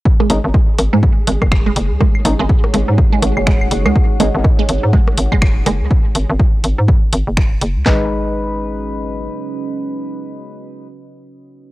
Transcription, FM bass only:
X:1
M:4/4
L:1/16
Q:"Swing 16ths" 1/4=123
K:G#m
V:1 name="FM bass" clef=bass
z2 G,,, G,,, z2 G,,, G,, z2 G,,, F,,,2 D,,, F,,, C,, | z2 G,,, G,,, z2 G,,, G,, z2 G,,, F,,,2 D,,, F,,, C,, | z2 G,,, G,,, z2 G,,, G,, z2 G,,, F,,,2 D,,, F,,, C,, | z2 G,,, G,,, z2 G,,, G,, z2 G,,, F,,,2 D,,, F,,, C,, |
G,,,12 z4 | z16 |]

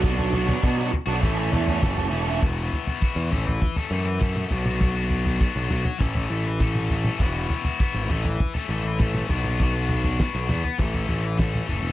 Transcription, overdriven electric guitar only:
X:1
M:4/4
L:1/16
Q:1/4=100
K:A
V:1 name="Overdriven electric guitar"
[F,B,DF]2 [F,B,DF]2 [F,B,DF] [B,DF]2 [B,DF] [E,A,CA] [A,CA]3 [E,A,CA] [A,CA] [E,A,CA] [A,CA] | z16 | z16 | z16 |
z16 |]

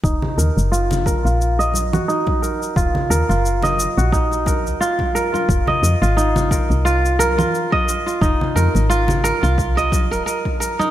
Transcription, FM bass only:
X:1
M:4/4
L:1/16
Q:"Swing 16ths" 1/4=88
K:Ebdor
V:1 name="FM bass" clef=bass
E,,, z E,, G,,,3 z B,,,4 z4 z | E,,, z E,, G,,,3 z B,,,4 D,, z4 | F,,, z F,, A,,,3 z C,,4 z4 z | F,,, z F,, A,,,3 z C,,4 E,,, z4 |]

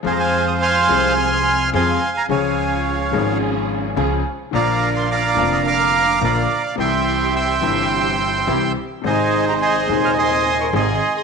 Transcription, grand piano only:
X:1
M:4/4
L:1/8
Q:1/4=107
K:Fm
V:1 name="Grand piano" clef=bass
[F,,F,A,CA]3 [C,,C,F,A,CA]3 [F,,F,A,CA] z | [D,,D,F,A,DA]3 [A,,,A,,F,A,DA]3 [D,,D,F,A,DA] z | [B,,,B,,=D,F,B,F]3 [F,,,F,,D,F,B,F]3 [B,,,B,,D,F,B,F] z | [C,,C,=E,G,=E]3 [G,,,G,,C,E,G,E]3 [C,,C,E,G,E] z |
[A,,,A,,C,E,A,E]3 [E,,,E,,C,E,A,E]3 [A,,,A,,C,E,A,E] z |]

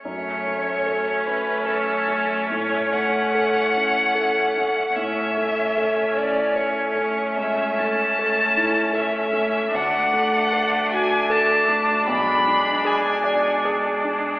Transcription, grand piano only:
X:1
M:3/4
L:1/8
Q:1/4=75
K:F#m
V:1 name="Grand piano"
F,, A, A C A A, | A,, A, A C A A, | A,, A, A C A A, | C,, A, A E A A, |
D,, A, A F A A, | B,,, D G d G D |]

